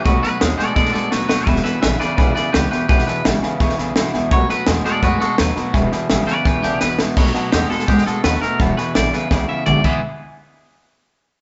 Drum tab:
CC |----------------|----------------|----------------|----------------|
HH |----p-------p---|----p-------p---|----p-------p---|----p-------p---|
SD |o-o-o-o-ooo-o-o-|ooo-o-o-o-o-o-o-|ooo-o-o-ooo-o-o-|o-o-o-o-o-o-o-o-|
T2 |----------------|----------------|----------------|----------------|
BD |o-------o-------|o-------o-------|o-------o-------|o-------o-------|

CC |----------------|x---------------|--------------x-|----------------|
HH |----p-------p---|----p-------p---|----p-------p---|----------------|
SD |o-o-o-o-o-o-o-o-|ooo-o-ooooo-o-o-|o-o-o-o-o-------|----------------|
T2 |----------------|----------------|------------o---|----------------|
BD |o-------o-------|o-------o-------|o-------o-----o-|----------------|